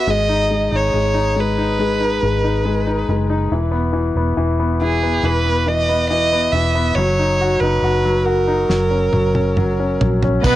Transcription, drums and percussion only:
8.70 snare soft
9.13 high tom soft
9.35 high tom medium
9.57 mid tom medium
10.01 floor tom medium
10.22 floor tom medium
10.44 kick medium
10.44 crash medium
10.44 tambourine soft

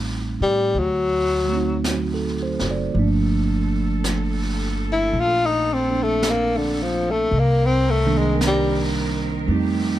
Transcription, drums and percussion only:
0.75 brush sweep soft
1.84 brush sweep soft
1.84 snare soft
1.84 hi-hat pedal soft
2.59 snare soft
2.96 brush sweep soft
4.04 brush sweep soft
4.04 snare soft
4.04 hi-hat pedal soft
5.14 brush sweep soft
6.22 brush sweep soft
6.22 snare soft
6.22 hi-hat pedal soft
7.32 brush sweep soft
8.41 brush sweep soft
8.41 snare soft
8.41 hi-hat pedal medium
9.50 brush sweep soft

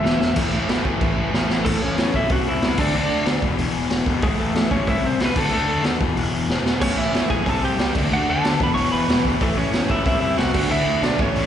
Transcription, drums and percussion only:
0.05 snare loud
0.21 snare medium
0.36 kick loud
0.36 crash loud
0.36 crash medium
0.69 snare loud
0.69 crash medium
0.85 kick medium
1.01 kick loud
1.01 crash medium
1.34 snare medium
1.50 snare loud
1.66 kick loud
1.66 crash loud
1.98 snare loud
1.98 open hi-hat medium
2.14 kick medium
2.29 kick loud
2.29 open hi-hat medium
2.62 snare loud
2.62 open hi-hat medium
2.78 kick loud
2.78 crash loud
3.26 snare loud
3.26 open hi-hat medium
3.42 kick loud
3.58 open hi-hat medium
3.90 snare loud
3.90 open hi-hat medium
4.06 kick loud
4.22 kick loud
4.22 open hi-hat medium
4.55 snare loud
4.55 open hi-hat medium
4.71 kick medium
4.87 kick loud
4.87 open hi-hat medium
5.20 snare loud
5.20 open hi-hat medium
5.36 kick loud
5.36 crash loud
5.84 snare loud
5.84 open hi-hat medium
6.01 kick loud
6.17 open hi-hat medium
6.50 snare medium
6.66 snare loud
6.82 kick loud
6.82 crash loud
7.14 snare loud
7.14 open hi-hat medium
7.30 kick medium
7.46 kick loud
7.46 open hi-hat medium
7.79 snare loud
7.79 open hi-hat medium
7.95 kick loud
7.95 crash loud
8.44 snare loud
8.44 open hi-hat medium
8.60 kick loud
8.77 open hi-hat medium
9.09 snare loud
9.09 open hi-hat medium
9.25 kick medium
9.41 kick loud
9.41 open hi-hat medium
9.73 snare loud
9.73 open hi-hat medium
9.90 kick medium
10.06 kick loud
10.06 open hi-hat medium
10.38 snare loud
10.38 open hi-hat medium
10.54 kick loud
10.54 crash loud
11.03 snare loud
11.03 open hi-hat medium
11.19 kick loud
11.36 open hi-hat medium

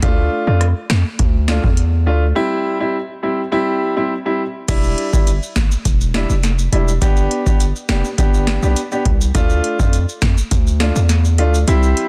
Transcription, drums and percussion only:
0.02 kick loud
0.02 closed hi-hat medium
0.61 cross-stick medium
0.61 closed hi-hat medium
0.90 snare loud
1.19 kick loud
1.19 closed hi-hat medium
1.48 snare loud
1.64 kick medium
1.77 closed hi-hat medium
4.68 kick loud
4.68 closed hi-hat medium
4.68 crash loud
4.68 maracas medium
4.84 maracas soft
4.98 closed hi-hat medium
5.13 kick medium
5.13 maracas medium
5.27 closed hi-hat medium
5.27 maracas medium
5.43 maracas soft
5.56 kick medium
5.56 snare loud
5.56 closed hi-hat soft
5.56 maracas medium
5.71 maracas medium
5.85 kick loud
5.85 closed hi-hat medium
5.85 maracas medium
6.01 maracas medium
6.14 snare loud
6.14 closed hi-hat soft
6.30 maracas medium
6.43 snare medium
6.43 closed hi-hat medium
6.43 maracas medium
6.59 maracas medium
6.73 closed hi-hat medium
6.88 maracas medium
7.02 kick loud
7.02 closed hi-hat medium
7.02 maracas medium
7.17 maracas soft
7.31 closed hi-hat medium
7.46 kick medium
7.46 maracas medium
7.60 closed hi-hat medium
7.60 maracas medium
7.76 maracas soft
7.89 snare loud
7.89 closed hi-hat soft
7.89 high timbale medium
7.89 maracas medium
8.04 maracas medium
8.18 kick loud
8.18 closed hi-hat medium
8.18 maracas medium
8.34 maracas medium
8.47 snare loud
8.47 closed hi-hat soft
8.63 maracas medium
8.76 closed hi-hat medium
8.76 maracas medium
8.92 maracas medium
9.05 kick loud
9.05 closed hi-hat medium
9.21 maracas medium
9.35 kick loud
9.35 closed hi-hat medium
9.35 maracas medium
9.50 maracas soft
9.64 closed hi-hat medium
9.79 kick loud
9.79 maracas medium
9.93 closed hi-hat medium
9.93 maracas medium
10.09 maracas soft
10.22 kick loud
10.22 snare loud
10.22 closed hi-hat soft
10.22 maracas medium
10.38 maracas medium
10.51 kick loud
10.51 closed hi-hat medium
10.51 maracas medium
10.67 maracas medium
10.80 snare loud
10.80 closed hi-hat soft
10.96 maracas medium
11.09 snare medium
11.09 closed hi-hat medium
11.09 maracas medium
11.25 maracas medium
11.38 closed hi-hat medium
11.54 maracas medium
11.68 closed hi-hat medium
11.68 maracas medium
11.83 maracas soft
11.97 closed hi-hat medium

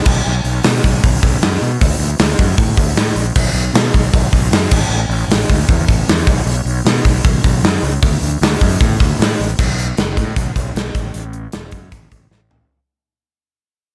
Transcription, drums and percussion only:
0.05 kick loud
0.05 crash loud
0.45 open hi-hat medium
0.63 snare loud
0.63 open hi-hat medium
0.83 kick medium
0.83 open hi-hat medium
1.04 kick loud
1.04 open hi-hat medium
1.22 kick loud
1.22 open hi-hat medium
1.42 snare loud
1.42 open hi-hat medium
1.61 open hi-hat medium
1.81 kick loud
1.81 open hi-hat loud
2.01 open hi-hat medium
2.19 snare loud
2.19 open hi-hat loud
2.39 kick medium
2.39 open hi-hat medium
2.57 kick loud
2.57 open hi-hat loud
2.77 kick medium
2.77 open hi-hat medium
2.96 snare loud
2.96 open hi-hat medium
3.16 open hi-hat medium
3.35 kick loud
3.35 crash loud
3.56 open hi-hat medium
3.75 snare loud
3.75 open hi-hat medium
3.94 kick medium
3.94 open hi-hat medium
4.14 kick loud
4.14 open hi-hat medium
4.33 kick medium
4.33 open hi-hat medium
4.52 snare loud
4.52 open hi-hat medium
4.71 kick loud
4.71 crash loud
5.11 open hi-hat medium
5.31 snare loud
5.31 open hi-hat medium
5.50 kick medium
5.50 open hi-hat medium
5.69 kick loud
5.69 open hi-hat loud
5.88 kick medium
5.88 open hi-hat medium
6.08 snare loud
6.08 open hi-hat medium
6.27 kick loud
6.27 open hi-hat medium
6.47 open hi-hat medium
6.67 open hi-hat medium
6.86 snare loud
6.86 open hi-hat medium
7.05 kick medium
7.05 open hi-hat medium
7.25 kick loud
7.25 open hi-hat medium
7.44 kick loud
7.44 open hi-hat medium
7.64 snare loud
7.64 open hi-hat medium
7.84 open hi-hat medium
8.03 kick loud
8.03 open hi-hat medium
8.23 open hi-hat medium
8.42 snare loud
8.42 open hi-hat medium
8.61 kick medium
8.61 open hi-hat medium
8.81 kick loud
8.81 open hi-hat loud
9.00 kick medium
9.00 open hi-hat medium
9.21 snare loud
9.21 open hi-hat medium
9.40 open hi-hat medium
9.59 kick loud
9.59 crash medium
9.79 closed hi-hat medium
9.97 snare loud
9.97 closed hi-hat medium
10.17 kick medium
10.17 closed hi-hat medium
10.36 kick loud
10.36 closed hi-hat medium
10.56 kick medium
10.56 closed hi-hat medium
10.76 snare loud
10.76 closed hi-hat medium
10.95 kick loud
10.95 closed hi-hat medium
11.14 closed hi-hat medium
11.33 closed hi-hat medium
11.52 snare loud
11.52 closed hi-hat medium
11.71 kick medium
11.71 closed hi-hat medium
11.92 kick loud
11.92 closed hi-hat medium
12.12 kick medium
12.12 closed hi-hat medium
12.31 snare medium
12.51 floor tom medium

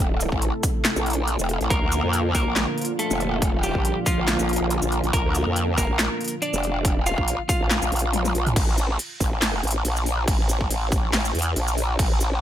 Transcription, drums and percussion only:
0.20 closed hi-hat medium
0.20 shaker medium
0.32 kick medium
0.42 closed hi-hat medium
0.63 kick loud
0.63 open hi-hat medium
0.63 shaker medium
0.85 snare loud
0.85 clap medium
0.85 closed hi-hat medium
0.96 shaker medium
1.06 closed hi-hat soft
1.10 closed hi-hat medium
1.13 closed hi-hat medium
1.28 closed hi-hat medium
1.39 shaker medium
1.49 closed hi-hat medium
1.61 closed hi-hat soft
1.70 kick loud
1.70 closed hi-hat medium
1.92 closed hi-hat medium
1.92 shaker medium
2.13 closed hi-hat medium
2.35 kick medium
2.35 open hi-hat loud
2.35 shaker medium
2.56 snare loud
2.56 clap medium
2.56 closed hi-hat medium
2.78 closed hi-hat soft
2.81 closed hi-hat medium
2.85 closed hi-hat medium
2.99 closed hi-hat medium
3.11 shaker medium
3.20 closed hi-hat medium
3.42 kick loud
3.42 closed hi-hat medium
3.63 closed hi-hat medium
3.63 shaker medium
3.75 kick medium
3.85 closed hi-hat medium
4.06 kick loud
4.06 open hi-hat loud
4.06 shaker medium
4.28 snare loud
4.28 clap medium
4.28 closed hi-hat medium
4.39 shaker medium
4.49 closed hi-hat soft
4.53 closed hi-hat medium
4.56 closed hi-hat medium
4.70 closed hi-hat medium
4.82 shaker medium
4.92 closed hi-hat medium
5.04 closed hi-hat soft
5.13 kick loud
5.13 closed hi-hat medium
5.35 closed hi-hat medium
5.35 shaker medium
5.56 closed hi-hat medium
5.78 kick medium
5.78 open hi-hat loud
5.78 shaker medium
5.99 snare loud
5.99 clap medium
5.99 closed hi-hat medium
6.21 closed hi-hat soft
6.24 closed hi-hat medium
6.28 closed hi-hat medium
6.42 closed hi-hat medium
6.54 shaker medium
6.63 closed hi-hat medium
6.85 kick loud
6.85 closed hi-hat medium
7.06 closed hi-hat medium
7.06 shaker medium
7.18 kick medium
7.28 closed hi-hat medium
7.49 kick loud
7.49 open hi-hat loud
7.49 shaker medium
7.71 snare loud
7.71 clap medium
7.71 closed hi-hat medium
7.82 shaker medium
7.92 closed hi-hat medium
7.96 closed hi-hat medium
7.99 closed hi-hat medium
8.13 closed hi-hat medium
8.13 high tom medium
8.25 high tom medium
8.25 shaker medium
8.35 closed hi-hat medium
8.47 closed hi-hat soft
8.47 mid tom medium
8.56 kick loud
8.56 closed hi-hat medium
8.56 crash loud
8.56 crash medium
8.78 closed hi-hat medium
8.78 shaker medium
8.99 closed hi-hat medium
8.99 crash soft
9.20 kick medium
9.20 open hi-hat medium
9.20 shaker medium
9.42 snare loud
9.42 clap loud
9.42 closed hi-hat medium
9.42 crash medium
9.63 closed hi-hat medium
9.67 closed hi-hat medium
9.71 closed hi-hat medium
9.85 closed hi-hat medium
9.85 crash soft
9.97 shaker medium
10.06 open hi-hat loud
10.28 kick loud
10.28 closed hi-hat medium
10.28 crash medium
10.49 closed hi-hat medium
10.49 shaker medium
10.61 kick medium
10.71 closed hi-hat medium
10.71 crash soft
10.92 kick loud
10.92 open hi-hat medium
10.92 shaker medium
11.13 snare loud
11.13 clap loud
11.13 closed hi-hat medium
11.13 crash medium
11.25 shaker medium
11.35 closed hi-hat medium
11.39 closed hi-hat medium
11.42 closed hi-hat medium
11.56 closed hi-hat medium
11.56 crash soft
11.68 shaker medium
11.78 open hi-hat medium
11.99 kick loud
11.99 closed hi-hat medium
11.99 crash medium
12.21 closed hi-hat medium
12.21 shaker medium

